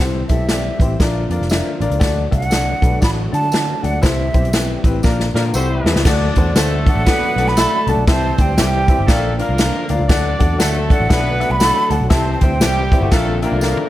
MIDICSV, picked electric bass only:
0, 0, Header, 1, 3, 480
1, 0, Start_track
1, 0, Tempo, 505051
1, 1909, Time_signature, 4, 2, 24, 8
1, 13202, End_track
2, 0, Start_track
2, 0, Title_t, "Picked electric bass"
2, 0, Program_c, 0, 34
2, 0, Note_on_c, 0, 36, 95
2, 222, Note_off_c, 0, 36, 0
2, 280, Note_on_c, 0, 35, 75
2, 666, Note_off_c, 0, 35, 0
2, 753, Note_on_c, 0, 33, 85
2, 905, Note_off_c, 0, 33, 0
2, 945, Note_on_c, 0, 34, 106
2, 1184, Note_off_c, 0, 34, 0
2, 1233, Note_on_c, 0, 41, 94
2, 1311, Note_off_c, 0, 41, 0
2, 1328, Note_on_c, 0, 29, 80
2, 1524, Note_off_c, 0, 29, 0
2, 1715, Note_on_c, 0, 33, 91
2, 1793, Note_off_c, 0, 33, 0
2, 1807, Note_on_c, 0, 37, 89
2, 1885, Note_off_c, 0, 37, 0
2, 1909, Note_on_c, 0, 38, 108
2, 2147, Note_off_c, 0, 38, 0
2, 2204, Note_on_c, 0, 36, 94
2, 2591, Note_off_c, 0, 36, 0
2, 2680, Note_on_c, 0, 35, 83
2, 2830, Note_off_c, 0, 35, 0
2, 2873, Note_on_c, 0, 33, 97
2, 3110, Note_off_c, 0, 33, 0
2, 3167, Note_on_c, 0, 50, 104
2, 3553, Note_off_c, 0, 50, 0
2, 3647, Note_on_c, 0, 38, 89
2, 3795, Note_off_c, 0, 38, 0
2, 3828, Note_on_c, 0, 36, 110
2, 4067, Note_off_c, 0, 36, 0
2, 4127, Note_on_c, 0, 35, 83
2, 4513, Note_off_c, 0, 35, 0
2, 4600, Note_on_c, 0, 33, 84
2, 4752, Note_off_c, 0, 33, 0
2, 4788, Note_on_c, 0, 34, 108
2, 5028, Note_off_c, 0, 34, 0
2, 5079, Note_on_c, 0, 46, 106
2, 5231, Note_off_c, 0, 46, 0
2, 5264, Note_on_c, 0, 36, 103
2, 5505, Note_off_c, 0, 36, 0
2, 5556, Note_on_c, 0, 40, 93
2, 5636, Note_off_c, 0, 40, 0
2, 5654, Note_on_c, 0, 37, 88
2, 5731, Note_off_c, 0, 37, 0
2, 5749, Note_on_c, 0, 38, 96
2, 5989, Note_off_c, 0, 38, 0
2, 6048, Note_on_c, 0, 40, 91
2, 6196, Note_off_c, 0, 40, 0
2, 6224, Note_on_c, 0, 38, 91
2, 6539, Note_off_c, 0, 38, 0
2, 6611, Note_on_c, 0, 33, 100
2, 6690, Note_off_c, 0, 33, 0
2, 6997, Note_on_c, 0, 35, 102
2, 7268, Note_off_c, 0, 35, 0
2, 7479, Note_on_c, 0, 36, 101
2, 7557, Note_off_c, 0, 36, 0
2, 7564, Note_on_c, 0, 35, 91
2, 7645, Note_off_c, 0, 35, 0
2, 7672, Note_on_c, 0, 36, 116
2, 7910, Note_off_c, 0, 36, 0
2, 7966, Note_on_c, 0, 38, 87
2, 8145, Note_on_c, 0, 36, 83
2, 8160, Note_off_c, 0, 38, 0
2, 8460, Note_off_c, 0, 36, 0
2, 8542, Note_on_c, 0, 31, 87
2, 8616, Note_off_c, 0, 31, 0
2, 8630, Note_on_c, 0, 34, 100
2, 8942, Note_off_c, 0, 34, 0
2, 9019, Note_on_c, 0, 36, 87
2, 9212, Note_off_c, 0, 36, 0
2, 9410, Note_on_c, 0, 38, 103
2, 9483, Note_off_c, 0, 38, 0
2, 9496, Note_on_c, 0, 37, 89
2, 9571, Note_off_c, 0, 37, 0
2, 9888, Note_on_c, 0, 40, 91
2, 10035, Note_off_c, 0, 40, 0
2, 10064, Note_on_c, 0, 38, 85
2, 10378, Note_off_c, 0, 38, 0
2, 10456, Note_on_c, 0, 33, 95
2, 10531, Note_off_c, 0, 33, 0
2, 10548, Note_on_c, 0, 35, 99
2, 10860, Note_off_c, 0, 35, 0
2, 10928, Note_on_c, 0, 36, 83
2, 11125, Note_off_c, 0, 36, 0
2, 11315, Note_on_c, 0, 38, 105
2, 11393, Note_off_c, 0, 38, 0
2, 11411, Note_on_c, 0, 35, 97
2, 11488, Note_off_c, 0, 35, 0
2, 11503, Note_on_c, 0, 36, 107
2, 11743, Note_off_c, 0, 36, 0
2, 11796, Note_on_c, 0, 38, 87
2, 11978, Note_on_c, 0, 36, 85
2, 11992, Note_off_c, 0, 38, 0
2, 12293, Note_off_c, 0, 36, 0
2, 12363, Note_on_c, 0, 31, 90
2, 12442, Note_off_c, 0, 31, 0
2, 12464, Note_on_c, 0, 34, 118
2, 12777, Note_off_c, 0, 34, 0
2, 12846, Note_on_c, 0, 36, 91
2, 13042, Note_off_c, 0, 36, 0
2, 13202, End_track
3, 0, Start_track
3, 0, Title_t, "Muted picked electric bass strokes"
3, 6855, Note_on_c, 9, 29, 49
3, 6950, Note_off_c, 9, 29, 0
3, 13202, End_track
0, 0, End_of_file